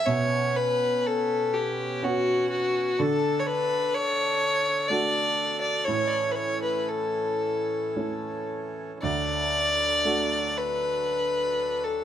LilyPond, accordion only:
\new Staff \with { instrumentName = "Accordion" } { \time 3/4 \key d \lydian \tempo 4 = 60 << { b'2. | a'2.~ | a'2. | a'2. | } \\ { cis'2. | d'2. | <e cis'>2. | <fis d'>2. | } >> }